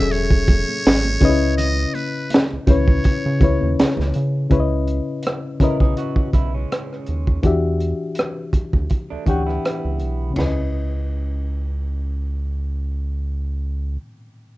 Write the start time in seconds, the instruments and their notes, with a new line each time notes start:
Already playing: analog synth bass E1, reed electric piano F#3 C#4 G#4 A4 E5, muted trumpet E5
0.11 muted trumpet C#5, closed hi-hat, muted conga
0.31 kick, muted conga
0.47 kick, closed hi-hat, high conga
0.68 high conga
0.85 analog synth bass G#1, snare, closed hi-hat, muted conga
1.04 high conga, low conga
1.21 analog synth bass C#2, reed electric piano C#3 C#4 D#4 B4, kick, closed hi-hat
1.25 reed electric piano D#5
1.29 reed electric piano E4
1.58 muted trumpet D#5, closed hi-hat, low conga
1.77 muted conga
1.95 muted trumpet B4, closed hi-hat, high conga
2.30 closed hi-hat, muted conga, high conga
2.34 snare
2.50 analog synth bass C#2, muted conga
2.67 analog synth bass C#2, reed electric piano C#3 C#4 E4 B4 C#5, muted trumpet C#5, kick, closed hi-hat, high conga, low conga
2.88 kick
3.04 kick, closed hi-hat, muted conga
3.24 analog synth bass C#3, muted conga
3.40 analog synth bass C#2, reed electric piano C#3 C#4 E4 B4, kick, closed hi-hat, high conga
3.44 reed electric piano C#5
3.61 analog synth bass D#2, high conga
3.79 analog synth bass C#2, snare, closed hi-hat
3.97 analog synth bass C#2, snare, high conga, low conga
4.14 analog synth bass C#3, closed hi-hat
4.49 analog synth bass C#2, reed electric piano C#3 C#4 E4 B4 C#5, kick, closed hi-hat
4.60 reed electric piano D#5
4.87 closed hi-hat
5.23 closed hi-hat
5.27 cross-stick
5.60 analog synth bass B1, reed electric piano C#3 C#4 E4 B4 D#5, clean electric guitar E4 A#4, kick, closed hi-hat
5.80 analog synth bass B1, clean electric guitar D#4 G#4, kick, cross-stick
5.97 clean electric guitar C#4 F#4, closed hi-hat
6.16 analog synth bass B1, kick
6.33 analog synth bass B1, clean electric guitar B3 E4, kick, closed hi-hat
6.54 clean electric guitar G#3 C#4
6.72 cross-stick, closed hi-hat
6.93 cross-stick
7.06 analog synth bass D#2, closed hi-hat
7.27 kick
7.43 analog synth bass E2, reed electric piano E3 D4 F#4 G4 E5, kick, closed hi-hat
7.80 closed hi-hat
8.15 closed hi-hat
8.19 cross-stick
8.53 analog synth bass D2, kick, closed hi-hat
8.73 analog synth bass D2, kick
8.90 kick, closed hi-hat
9.10 analog synth bass D2, clean electric guitar A3 D4
9.26 analog synth bass D2, reed electric piano E3 D4 G4 F#5 G5, clean electric guitar C#4 F#4, kick, closed hi-hat
9.46 clean electric guitar B3 E4, cross-stick
9.65 cross-stick, closed hi-hat
9.85 analog synth bass C#2
10.00 analog synth bass B1, closed hi-hat
10.30 reed electric piano C#3 C#4
10.36 analog synth bass C#2, reed electric piano E4, snare, floor tom, ride bell
10.42 reed electric piano B4 D#5